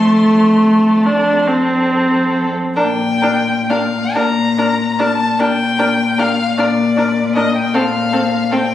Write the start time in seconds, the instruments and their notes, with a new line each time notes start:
Already playing: cello F2, viola A3, violin A4 C6
1.06 viola D4
1.48 viola C4
2.76 cello A#2, viola D4, violin A#4 G5
3.22 viola D4, violin A#4
3.70 viola D4, violin A#4 F5
4.15 cello A#2, viola D4, violin A#4 A#5
4.58 viola D4, violin A#4
4.99 viola D4, violin A#4 A5
5.39 cello A#2, viola D4, violin A#4 G5
5.79 viola D4, violin A#4
6.18 viola D4, violin A#4 F5
6.58 cello A#2, viola D4, violin A#4 D5
6.97 viola D4, violin A#4
7.36 viola D4, violin A#4 D#5
7.57 violin G5
7.74 cello A#2, viola C4, violin A4 F5
8.12 viola C4, violin A4
8.51 viola C4, violin A4 G5